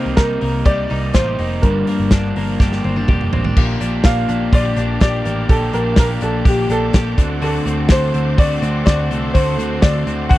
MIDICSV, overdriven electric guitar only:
0, 0, Header, 1, 2, 480
1, 0, Start_track
1, 0, Key_signature, -2, "major"
1, 0, Tempo, 482703
1, 1620, Time_signature, 4, 2, 24, 8
1, 10322, End_track
2, 0, Start_track
2, 0, Title_t, "Overdriven electric guitar"
2, 0, Program_c, 0, 29
2, 0, Note_on_c, 0, 55, 44
2, 0, Note_on_c, 0, 58, 49
2, 0, Note_on_c, 0, 63, 51
2, 165, Note_off_c, 0, 55, 0
2, 170, Note_off_c, 0, 58, 0
2, 171, Note_on_c, 0, 48, 65
2, 176, Note_off_c, 0, 63, 0
2, 177, Note_on_c, 0, 55, 63
2, 182, Note_on_c, 0, 58, 60
2, 188, Note_on_c, 0, 63, 66
2, 399, Note_off_c, 0, 63, 0
2, 409, Note_off_c, 0, 58, 0
2, 411, Note_on_c, 0, 63, 42
2, 413, Note_off_c, 0, 48, 0
2, 417, Note_off_c, 0, 55, 0
2, 421, Note_on_c, 0, 58, 39
2, 432, Note_on_c, 0, 55, 39
2, 637, Note_off_c, 0, 55, 0
2, 643, Note_off_c, 0, 58, 0
2, 645, Note_off_c, 0, 63, 0
2, 645, Note_on_c, 0, 48, 77
2, 648, Note_on_c, 0, 55, 69
2, 655, Note_on_c, 0, 58, 78
2, 657, Note_on_c, 0, 63, 84
2, 880, Note_off_c, 0, 63, 0
2, 888, Note_off_c, 0, 58, 0
2, 891, Note_off_c, 0, 48, 0
2, 892, Note_on_c, 0, 63, 55
2, 893, Note_off_c, 0, 55, 0
2, 900, Note_on_c, 0, 58, 48
2, 907, Note_on_c, 0, 55, 47
2, 1129, Note_off_c, 0, 55, 0
2, 1135, Note_off_c, 0, 58, 0
2, 1135, Note_off_c, 0, 63, 0
2, 1135, Note_on_c, 0, 48, 59
2, 1141, Note_on_c, 0, 55, 66
2, 1147, Note_on_c, 0, 58, 58
2, 1156, Note_on_c, 0, 63, 58
2, 1369, Note_off_c, 0, 63, 0
2, 1377, Note_off_c, 0, 48, 0
2, 1378, Note_off_c, 0, 58, 0
2, 1380, Note_off_c, 0, 55, 0
2, 1381, Note_on_c, 0, 63, 45
2, 1390, Note_on_c, 0, 58, 47
2, 1397, Note_on_c, 0, 55, 39
2, 1616, Note_off_c, 0, 58, 0
2, 1621, Note_off_c, 0, 63, 0
2, 1623, Note_on_c, 0, 43, 73
2, 1624, Note_off_c, 0, 55, 0
2, 1625, Note_on_c, 0, 50, 78
2, 1628, Note_on_c, 0, 53, 68
2, 1628, Note_on_c, 0, 58, 76
2, 1631, Note_on_c, 0, 62, 70
2, 1852, Note_off_c, 0, 62, 0
2, 1862, Note_off_c, 0, 43, 0
2, 1863, Note_off_c, 0, 50, 0
2, 1864, Note_on_c, 0, 62, 46
2, 1865, Note_off_c, 0, 53, 0
2, 1865, Note_off_c, 0, 58, 0
2, 1878, Note_on_c, 0, 58, 47
2, 1889, Note_on_c, 0, 53, 44
2, 2103, Note_off_c, 0, 62, 0
2, 2109, Note_off_c, 0, 53, 0
2, 2110, Note_off_c, 0, 58, 0
2, 2114, Note_on_c, 0, 50, 66
2, 2120, Note_on_c, 0, 53, 66
2, 2127, Note_on_c, 0, 58, 58
2, 2133, Note_on_c, 0, 62, 62
2, 2341, Note_off_c, 0, 62, 0
2, 2348, Note_off_c, 0, 50, 0
2, 2351, Note_off_c, 0, 53, 0
2, 2353, Note_on_c, 0, 62, 45
2, 2355, Note_off_c, 0, 58, 0
2, 2369, Note_on_c, 0, 58, 47
2, 2377, Note_on_c, 0, 53, 44
2, 2583, Note_off_c, 0, 53, 0
2, 2588, Note_off_c, 0, 62, 0
2, 2589, Note_off_c, 0, 58, 0
2, 2592, Note_on_c, 0, 43, 87
2, 2594, Note_on_c, 0, 50, 91
2, 2595, Note_on_c, 0, 53, 86
2, 2601, Note_on_c, 0, 58, 84
2, 2602, Note_on_c, 0, 62, 95
2, 2820, Note_off_c, 0, 62, 0
2, 2828, Note_off_c, 0, 43, 0
2, 2828, Note_off_c, 0, 50, 0
2, 2829, Note_off_c, 0, 53, 0
2, 2832, Note_off_c, 0, 58, 0
2, 2832, Note_on_c, 0, 62, 58
2, 2843, Note_on_c, 0, 58, 54
2, 2851, Note_on_c, 0, 53, 46
2, 3066, Note_off_c, 0, 53, 0
2, 3068, Note_off_c, 0, 62, 0
2, 3073, Note_off_c, 0, 58, 0
2, 3076, Note_on_c, 0, 50, 63
2, 3078, Note_on_c, 0, 53, 64
2, 3087, Note_on_c, 0, 58, 75
2, 3095, Note_on_c, 0, 62, 72
2, 3303, Note_off_c, 0, 62, 0
2, 3310, Note_off_c, 0, 50, 0
2, 3311, Note_off_c, 0, 53, 0
2, 3315, Note_off_c, 0, 58, 0
2, 3315, Note_on_c, 0, 62, 59
2, 3327, Note_on_c, 0, 58, 52
2, 3334, Note_on_c, 0, 53, 41
2, 3549, Note_off_c, 0, 62, 0
2, 3555, Note_off_c, 0, 53, 0
2, 3555, Note_off_c, 0, 58, 0
2, 3557, Note_on_c, 0, 46, 81
2, 3564, Note_on_c, 0, 50, 69
2, 3567, Note_on_c, 0, 53, 82
2, 3567, Note_on_c, 0, 58, 74
2, 3569, Note_on_c, 0, 67, 97
2, 3570, Note_on_c, 0, 62, 91
2, 3777, Note_off_c, 0, 67, 0
2, 3786, Note_off_c, 0, 62, 0
2, 3789, Note_on_c, 0, 67, 60
2, 3791, Note_off_c, 0, 46, 0
2, 3794, Note_off_c, 0, 50, 0
2, 3795, Note_off_c, 0, 53, 0
2, 3795, Note_off_c, 0, 58, 0
2, 3798, Note_on_c, 0, 62, 56
2, 3807, Note_on_c, 0, 58, 51
2, 3809, Note_on_c, 0, 53, 47
2, 4023, Note_off_c, 0, 53, 0
2, 4027, Note_off_c, 0, 67, 0
2, 4030, Note_off_c, 0, 58, 0
2, 4031, Note_off_c, 0, 62, 0
2, 4035, Note_on_c, 0, 53, 60
2, 4042, Note_on_c, 0, 58, 57
2, 4049, Note_on_c, 0, 62, 63
2, 4050, Note_on_c, 0, 67, 67
2, 4261, Note_off_c, 0, 67, 0
2, 4265, Note_off_c, 0, 62, 0
2, 4270, Note_off_c, 0, 53, 0
2, 4273, Note_off_c, 0, 58, 0
2, 4273, Note_on_c, 0, 67, 50
2, 4277, Note_on_c, 0, 62, 39
2, 4285, Note_on_c, 0, 58, 42
2, 4289, Note_on_c, 0, 53, 36
2, 4506, Note_off_c, 0, 53, 0
2, 4509, Note_off_c, 0, 67, 0
2, 4511, Note_off_c, 0, 62, 0
2, 4512, Note_off_c, 0, 58, 0
2, 4516, Note_on_c, 0, 46, 77
2, 4516, Note_on_c, 0, 50, 75
2, 4518, Note_on_c, 0, 53, 73
2, 4524, Note_on_c, 0, 58, 82
2, 4525, Note_on_c, 0, 62, 77
2, 4527, Note_on_c, 0, 67, 80
2, 4746, Note_off_c, 0, 67, 0
2, 4750, Note_off_c, 0, 46, 0
2, 4750, Note_off_c, 0, 50, 0
2, 4751, Note_off_c, 0, 53, 0
2, 4754, Note_off_c, 0, 58, 0
2, 4755, Note_off_c, 0, 62, 0
2, 4758, Note_on_c, 0, 67, 55
2, 4766, Note_on_c, 0, 62, 55
2, 4774, Note_on_c, 0, 58, 51
2, 4776, Note_on_c, 0, 53, 42
2, 4985, Note_off_c, 0, 53, 0
2, 4990, Note_off_c, 0, 58, 0
2, 4991, Note_off_c, 0, 67, 0
2, 4995, Note_off_c, 0, 62, 0
2, 4997, Note_on_c, 0, 53, 59
2, 5002, Note_on_c, 0, 58, 60
2, 5009, Note_on_c, 0, 62, 60
2, 5016, Note_on_c, 0, 67, 64
2, 5218, Note_off_c, 0, 67, 0
2, 5224, Note_off_c, 0, 62, 0
2, 5230, Note_off_c, 0, 53, 0
2, 5230, Note_on_c, 0, 67, 53
2, 5233, Note_off_c, 0, 58, 0
2, 5236, Note_on_c, 0, 62, 50
2, 5243, Note_on_c, 0, 58, 42
2, 5249, Note_on_c, 0, 53, 39
2, 5467, Note_off_c, 0, 67, 0
2, 5469, Note_off_c, 0, 53, 0
2, 5470, Note_off_c, 0, 62, 0
2, 5473, Note_off_c, 0, 58, 0
2, 5473, Note_on_c, 0, 46, 71
2, 5480, Note_on_c, 0, 50, 81
2, 5481, Note_on_c, 0, 53, 77
2, 5485, Note_on_c, 0, 62, 85
2, 5486, Note_on_c, 0, 58, 80
2, 5489, Note_on_c, 0, 67, 86
2, 5699, Note_off_c, 0, 67, 0
2, 5707, Note_off_c, 0, 62, 0
2, 5708, Note_off_c, 0, 46, 0
2, 5711, Note_off_c, 0, 58, 0
2, 5711, Note_on_c, 0, 67, 52
2, 5712, Note_off_c, 0, 50, 0
2, 5712, Note_off_c, 0, 53, 0
2, 5719, Note_on_c, 0, 62, 48
2, 5723, Note_on_c, 0, 58, 52
2, 5731, Note_on_c, 0, 53, 50
2, 5935, Note_off_c, 0, 53, 0
2, 5943, Note_off_c, 0, 58, 0
2, 5947, Note_off_c, 0, 67, 0
2, 5947, Note_on_c, 0, 53, 58
2, 5949, Note_off_c, 0, 62, 0
2, 5955, Note_on_c, 0, 58, 60
2, 5961, Note_on_c, 0, 62, 67
2, 5962, Note_on_c, 0, 67, 65
2, 6169, Note_off_c, 0, 67, 0
2, 6174, Note_off_c, 0, 62, 0
2, 6181, Note_on_c, 0, 67, 50
2, 6182, Note_off_c, 0, 58, 0
2, 6185, Note_off_c, 0, 53, 0
2, 6186, Note_on_c, 0, 62, 46
2, 6194, Note_on_c, 0, 58, 38
2, 6202, Note_on_c, 0, 53, 43
2, 6414, Note_off_c, 0, 53, 0
2, 6415, Note_off_c, 0, 62, 0
2, 6417, Note_off_c, 0, 58, 0
2, 6417, Note_off_c, 0, 67, 0
2, 6417, Note_on_c, 0, 46, 83
2, 6422, Note_on_c, 0, 50, 68
2, 6426, Note_on_c, 0, 53, 80
2, 6427, Note_on_c, 0, 62, 78
2, 6429, Note_on_c, 0, 58, 76
2, 6429, Note_on_c, 0, 67, 77
2, 6645, Note_off_c, 0, 67, 0
2, 6653, Note_off_c, 0, 62, 0
2, 6655, Note_off_c, 0, 58, 0
2, 6657, Note_on_c, 0, 67, 59
2, 6659, Note_off_c, 0, 46, 0
2, 6661, Note_off_c, 0, 53, 0
2, 6662, Note_off_c, 0, 50, 0
2, 6665, Note_on_c, 0, 62, 55
2, 6667, Note_on_c, 0, 58, 46
2, 6673, Note_on_c, 0, 53, 43
2, 6887, Note_off_c, 0, 53, 0
2, 6892, Note_off_c, 0, 58, 0
2, 6899, Note_off_c, 0, 62, 0
2, 6899, Note_off_c, 0, 67, 0
2, 6899, Note_on_c, 0, 53, 51
2, 6904, Note_on_c, 0, 58, 57
2, 6911, Note_on_c, 0, 62, 64
2, 6919, Note_on_c, 0, 67, 67
2, 7129, Note_off_c, 0, 62, 0
2, 7133, Note_on_c, 0, 66, 56
2, 7140, Note_off_c, 0, 53, 0
2, 7142, Note_off_c, 0, 58, 0
2, 7147, Note_on_c, 0, 60, 47
2, 7150, Note_off_c, 0, 67, 0
2, 7151, Note_on_c, 0, 57, 41
2, 7369, Note_off_c, 0, 57, 0
2, 7371, Note_off_c, 0, 60, 0
2, 7376, Note_off_c, 0, 66, 0
2, 7377, Note_on_c, 0, 50, 75
2, 7381, Note_on_c, 0, 57, 74
2, 7383, Note_on_c, 0, 60, 76
2, 7386, Note_on_c, 0, 66, 78
2, 7603, Note_off_c, 0, 66, 0
2, 7614, Note_off_c, 0, 60, 0
2, 7615, Note_on_c, 0, 66, 54
2, 7618, Note_off_c, 0, 50, 0
2, 7620, Note_off_c, 0, 57, 0
2, 7626, Note_on_c, 0, 60, 52
2, 7634, Note_on_c, 0, 57, 44
2, 7857, Note_off_c, 0, 66, 0
2, 7862, Note_off_c, 0, 60, 0
2, 7864, Note_off_c, 0, 57, 0
2, 7867, Note_on_c, 0, 50, 55
2, 7876, Note_on_c, 0, 57, 59
2, 7880, Note_on_c, 0, 60, 65
2, 7881, Note_on_c, 0, 66, 70
2, 8090, Note_off_c, 0, 66, 0
2, 8101, Note_off_c, 0, 60, 0
2, 8102, Note_on_c, 0, 66, 46
2, 8103, Note_off_c, 0, 50, 0
2, 8107, Note_off_c, 0, 57, 0
2, 8113, Note_on_c, 0, 60, 45
2, 8119, Note_on_c, 0, 57, 39
2, 8331, Note_off_c, 0, 57, 0
2, 8333, Note_off_c, 0, 60, 0
2, 8337, Note_on_c, 0, 50, 76
2, 8340, Note_off_c, 0, 66, 0
2, 8343, Note_on_c, 0, 57, 73
2, 8345, Note_on_c, 0, 60, 69
2, 8352, Note_on_c, 0, 66, 74
2, 8574, Note_off_c, 0, 66, 0
2, 8577, Note_off_c, 0, 50, 0
2, 8580, Note_off_c, 0, 57, 0
2, 8581, Note_off_c, 0, 60, 0
2, 8586, Note_on_c, 0, 66, 51
2, 8594, Note_on_c, 0, 60, 51
2, 8599, Note_on_c, 0, 57, 47
2, 8821, Note_off_c, 0, 66, 0
2, 8823, Note_off_c, 0, 57, 0
2, 8825, Note_off_c, 0, 60, 0
2, 8827, Note_on_c, 0, 50, 61
2, 8835, Note_on_c, 0, 57, 67
2, 8840, Note_on_c, 0, 60, 60
2, 8848, Note_on_c, 0, 66, 58
2, 9053, Note_off_c, 0, 66, 0
2, 9061, Note_off_c, 0, 50, 0
2, 9064, Note_off_c, 0, 60, 0
2, 9065, Note_off_c, 0, 57, 0
2, 9065, Note_on_c, 0, 66, 48
2, 9076, Note_on_c, 0, 60, 45
2, 9083, Note_on_c, 0, 57, 43
2, 9288, Note_off_c, 0, 57, 0
2, 9294, Note_off_c, 0, 60, 0
2, 9296, Note_on_c, 0, 50, 67
2, 9297, Note_off_c, 0, 66, 0
2, 9300, Note_on_c, 0, 57, 80
2, 9306, Note_on_c, 0, 60, 77
2, 9308, Note_on_c, 0, 66, 78
2, 9524, Note_off_c, 0, 66, 0
2, 9535, Note_off_c, 0, 50, 0
2, 9536, Note_on_c, 0, 66, 55
2, 9537, Note_off_c, 0, 57, 0
2, 9537, Note_off_c, 0, 60, 0
2, 9549, Note_on_c, 0, 60, 54
2, 9559, Note_on_c, 0, 57, 44
2, 9766, Note_off_c, 0, 57, 0
2, 9773, Note_on_c, 0, 50, 59
2, 9774, Note_off_c, 0, 60, 0
2, 9775, Note_off_c, 0, 66, 0
2, 9778, Note_on_c, 0, 57, 63
2, 9785, Note_on_c, 0, 60, 68
2, 9791, Note_on_c, 0, 66, 69
2, 10010, Note_off_c, 0, 66, 0
2, 10013, Note_off_c, 0, 50, 0
2, 10015, Note_off_c, 0, 57, 0
2, 10019, Note_off_c, 0, 60, 0
2, 10022, Note_on_c, 0, 66, 51
2, 10029, Note_on_c, 0, 60, 44
2, 10038, Note_on_c, 0, 57, 39
2, 10252, Note_off_c, 0, 57, 0
2, 10255, Note_off_c, 0, 60, 0
2, 10257, Note_off_c, 0, 66, 0
2, 10259, Note_on_c, 0, 50, 77
2, 10264, Note_on_c, 0, 57, 75
2, 10267, Note_on_c, 0, 60, 73
2, 10273, Note_on_c, 0, 66, 80
2, 10322, Note_off_c, 0, 50, 0
2, 10322, Note_off_c, 0, 57, 0
2, 10322, Note_off_c, 0, 60, 0
2, 10322, Note_off_c, 0, 66, 0
2, 10322, End_track
0, 0, End_of_file